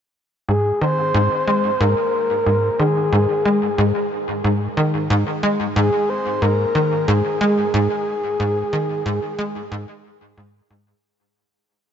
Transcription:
0.49 0.72 G#2 medium
0.49 0.80 G#4 loud
0.81 1.13 D#3 medium
0.81 1.82 C5 loud
1.14 1.29 G#2 loud
1.47 1.71 G#3 medium
1.80 1.95 G#2 loud
1.80 2.81 A#4 loud
2.46 2.70 G#2 medium
2.79 3.11 D#3 medium
2.79 4.11 G#4 medium
3.12 3.27 G#2 medium
3.45 3.69 G#3 medium
3.78 3.92 G#2 medium
4.44 4.68 G#2 medium
4.77 5.08 D#3 medium
5.10 5.24 G#2 loud
5.43 5.67 G#3 medium
5.76 5.90 G#2 loud
5.76 6.11 G#4 loud
6.09 6.44 C5 loud
6.42 6.66 G#2 medium
6.42 7.10 A#4 loud
6.75 7.06 D#3 medium
7.08 7.22 G#2 loud
7.08 10.38 G#4 loud
7.41 7.65 G#3 medium
7.74 7.88 G#2 loud
8.40 8.63 G#2 medium
8.73 9.04 D#3 medium
9.06 9.20 G#2 loud
9.39 9.62 G#3 medium
9.72 9.86 G#2 loud
10.37 10.61 G#2 medium
10.70 10.94 G#2 medium

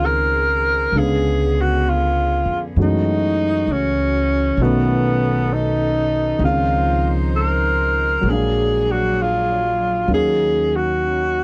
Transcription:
0.00 0.88 C#2 medium
0.00 0.91 D#3 medium
0.00 0.94 D#3 soft
0.00 0.94 G#3 soft
0.00 0.94 C4 soft
0.00 0.95 C#4 soft
0.00 0.95 F4 soft
0.00 2.73 G#4 medium
0.00 0.90 C5 medium
0.06 0.99 A#4 medium
0.92 2.43 C#2 medium
0.92 2.75 D3 medium
0.92 2.78 D3 soft
0.92 2.76 G#3 soft
0.92 2.75 B3 medium
0.92 2.78 B3 soft
0.97 2.76 C#4 soft
0.97 1.63 G#4 medium
0.97 2.79 F5 soft
1.61 1.91 F#4 medium
1.89 2.61 F4 medium
2.45 2.74 F2 medium
2.76 3.64 F#2 medium
2.76 4.58 E3 medium
2.76 4.60 E3 soft
2.76 4.60 G#3 soft
2.76 4.60 A3 soft
2.76 4.60 C#4 soft
2.76 4.58 F#4 medium
2.76 4.60 F#4 soft
2.82 3.74 D#4 medium
3.68 4.55 C#2 medium
3.72 4.64 C#4 medium
4.57 6.37 B1 medium
4.57 6.40 D#3 medium
4.57 6.40 D#3 soft
4.57 6.43 A3 soft
4.57 6.39 C#4 medium
4.57 6.39 A4 medium
4.62 6.43 B3 soft
4.62 5.55 B3 medium
4.62 6.43 C#4 soft
4.62 6.43 F#4 soft
5.53 6.43 D#4 medium
6.39 8.20 C#2 medium
6.39 8.25 D#3 soft
6.39 8.24 F3 medium
6.39 8.24 D#4 medium
6.39 8.24 C5 medium
6.43 8.23 G#3 soft
6.43 8.26 C4 soft
6.43 8.27 C#4 soft
6.43 7.14 F4 medium
6.43 8.28 F4 soft
7.36 8.31 A#4 medium
8.21 10.04 A#1 medium
8.21 10.06 F#3 soft
8.21 10.09 G#3 soft
8.21 10.07 D4 medium
8.26 10.08 F#3 medium
8.26 10.07 A#3 soft
8.26 10.12 D4 soft
8.26 10.08 G#4 medium
8.26 8.93 G#4 medium
8.33 10.11 F5 soft
8.92 9.23 F#4 medium
9.22 10.12 F4 medium
10.08 11.44 D#2 medium
10.08 11.44 D#3 medium
10.08 11.44 F#3 soft
10.08 11.44 A#3 soft
10.08 11.44 C#4 soft
10.08 11.44 C#4 medium
10.08 11.44 D#4 soft
10.12 10.77 G#4 medium
10.12 11.44 F5 soft
10.76 11.44 F#4 medium

